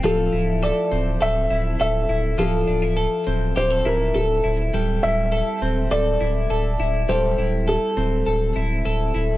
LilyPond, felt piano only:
\new Staff \with { instrumentName = "Felt piano" } { \time 4/4 \key d \minor \tempo 4 = 102 a'4 d''4 e''4 e''4 | a'4. r8 c''8 bes'8 a'8. r16 | r8 e''4 r8 d''2 | c''4 a'4. r4. | }